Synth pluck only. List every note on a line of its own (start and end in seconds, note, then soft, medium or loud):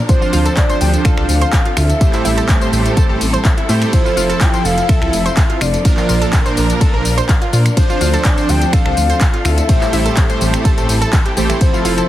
0.22 0.27 F4 medium
0.33 0.39 F4 loud
0.46 0.49 A4 loud
0.70 0.75 C5 loud
1.05 1.14 A4 loud
1.18 1.23 A4 medium
1.42 1.45 C5 loud
1.53 1.57 F5 loud
1.66 1.74 F4 medium
1.77 1.81 F4 medium
2.13 2.19 E4 medium
2.25 2.31 E4 loud
2.37 2.41 A4 loud
2.62 2.67 C5 loud
2.97 3.06 A4 medium
3.09 3.15 A4 medium
3.33 3.37 C5 loud
3.45 3.49 E5 loud
3.57 3.66 E4 medium
3.69 3.73 E4 medium
4.05 4.11 F4 medium
4.17 4.23 F4 loud
4.29 4.33 A4 loud
4.54 4.59 C5 loud
4.89 4.98 A4 loud
5.02 5.07 A4 medium
5.26 5.29 C5 loud
5.37 5.41 F5 loud
5.50 5.58 F4 medium
5.61 5.65 F4 medium
5.98 6.03 F4 medium
6.09 6.15 F4 loud
6.22 6.25 A4 loud
6.46 6.51 C5 loud
6.81 6.90 A4 loud
6.94 6.99 A#4 medium
7.18 7.21 C5 loud
7.29 7.33 F5 loud
7.42 7.50 F4 medium
7.53 7.57 F4 medium
7.90 7.95 F4 medium
8.01 8.07 F4 loud
8.14 8.17 A4 loud
8.38 8.43 C5 loud
8.73 8.82 A4 loud
8.86 8.91 A4 medium
9.10 9.13 C5 loud
9.21 9.25 F5 loud
9.34 9.42 F4 medium
9.45 9.49 F4 medium
9.82 9.87 E4 medium
9.93 9.99 E4 loud
10.06 10.09 A4 loud
10.30 10.35 C5 loud
10.65 10.74 A4 loud
10.78 10.83 A4 medium
11.01 11.10 A4 loud
11.13 11.19 E3 medium
11.25 11.31 G4 medium
11.37 11.46 G4 medium
11.49 11.55 E3 medium
11.73 11.79 F4 medium
11.85 11.91 F4 loud
11.97 12.01 A4 loud